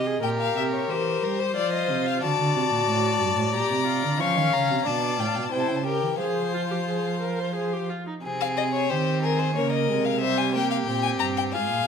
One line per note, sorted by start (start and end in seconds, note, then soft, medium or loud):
0.00 0.21 C3 medium
0.00 0.22 D#5 medium
0.07 0.23 G#4 medium
0.23 0.54 A#2 medium
0.23 0.92 G4 medium
0.23 0.91 A#4 medium
0.23 0.29 G5 medium
0.40 0.56 F5 medium
0.56 0.89 C3 medium
0.56 0.63 E5 medium
0.73 0.91 C#5 medium
0.90 1.22 E3 medium
0.90 1.56 G4 medium
0.90 1.25 A#4 medium
0.90 1.25 C5 medium
1.23 1.56 G3 medium
1.23 1.41 A#4 medium
1.23 2.22 C5 medium
1.40 1.55 C5 medium
1.56 1.91 F3 medium
1.56 2.24 F4 medium
1.56 1.72 D5 medium
1.73 2.07 D#5 medium
1.89 2.22 C3 medium
2.06 2.22 F5 medium
2.22 2.29 D3 medium
2.22 3.53 F#4 medium
2.22 4.16 D5 medium
2.22 3.52 A5 medium
2.39 2.55 D3 medium
2.56 2.62 C3 medium
2.72 2.88 A#2 medium
2.88 3.20 A2 medium
3.20 3.27 G2 medium
3.37 3.55 A2 medium
3.54 3.70 A#2 medium
3.54 3.86 G4 medium
3.54 4.21 A#5 medium
3.70 4.04 C3 medium
3.87 4.20 F4 medium
4.03 4.22 D3 medium
4.19 4.38 F3 medium
4.19 4.87 C#4 medium
4.19 4.84 F5 medium
4.19 4.55 C#6 medium
4.36 4.53 D#3 medium
4.53 4.69 C#3 medium
4.53 4.88 A#5 medium
4.70 4.77 C3 medium
4.85 5.21 B2 medium
4.85 5.18 D4 medium
4.85 5.50 D5 medium
4.85 5.21 A5 medium
5.18 5.38 A2 medium
5.18 5.51 F4 medium
5.18 5.28 G5 medium
5.27 5.36 A5 medium
5.35 5.52 B2 medium
5.35 5.44 G5 soft
5.43 5.52 A5 medium
5.51 5.69 C3 medium
5.51 5.85 E4 medium
5.51 5.85 C5 medium
5.51 5.61 G5 medium
5.60 5.69 A5 medium
5.68 6.05 C#3 medium
5.68 5.77 G5 soft
5.76 5.85 A5 medium
5.84 6.19 G4 medium
5.84 6.19 A#4 medium
5.84 6.20 G5 medium
6.03 6.20 E3 medium
6.20 7.87 F3 medium
6.20 6.53 G#4 medium
6.20 7.87 C5 medium
6.20 7.87 F5 medium
6.54 6.61 F4 medium
6.71 6.78 G4 medium
6.88 7.20 G#4 medium
7.21 7.40 A#4 medium
7.39 7.55 C5 medium
7.56 7.74 G#4 medium
7.73 7.91 G4 medium
7.89 8.07 F4 medium
8.07 8.14 D#4 medium
8.23 8.92 C3 medium
8.23 8.86 C4 medium
8.23 8.91 G#4 medium
8.41 8.47 F5 medium
8.57 8.64 D#5 medium
8.73 8.91 C#5 medium
8.89 9.58 D#3 medium
8.89 9.55 C4 medium
8.89 9.25 G4 medium
8.89 9.22 C5 medium
9.23 9.57 G#4 medium
9.23 9.40 A#4 medium
9.39 9.55 C5 medium
9.55 9.89 C#3 medium
9.55 9.91 A#3 medium
9.55 10.21 A#4 medium
9.55 9.71 C#5 medium
9.72 10.06 D#5 medium
9.89 10.86 C3 medium
9.89 10.24 G#3 medium
10.05 10.20 F5 medium
10.21 10.56 G3 medium
10.21 10.54 C5 medium
10.21 10.39 E5 medium
10.38 10.53 G#5 medium
10.54 10.89 A#3 medium
10.54 11.55 G4 medium
10.54 10.70 G5 medium
10.71 10.77 F5 medium
10.86 11.19 A#2 medium
10.86 11.55 C4 medium
10.86 11.02 G5 medium
11.03 11.09 G#5 medium
11.19 11.55 G2 medium
11.19 11.26 A#5 medium
11.37 11.43 G5 medium
11.53 11.70 G#2 medium
11.53 11.87 F4 medium
11.53 11.87 G#4 medium
11.53 11.87 F5 medium
11.70 11.87 A#2 medium